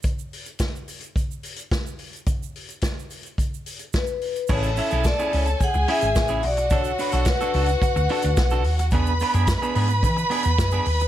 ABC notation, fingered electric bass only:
X:1
M:4/4
L:1/16
Q:1/4=108
K:A
V:1 name="Fingered electric bass" clef=bass
z16 | z16 | A,,,3 B,,,2 z C,,2 z C,, z G,,, A,,,2 B,,,2- | B,,,3 B,,,2 z C,,2 z D,, z D,, B,,,2 ^D,,2 |
E,,3 F,,2 z G,,2 E,2 z E,, F,,2 ^D,,2 |]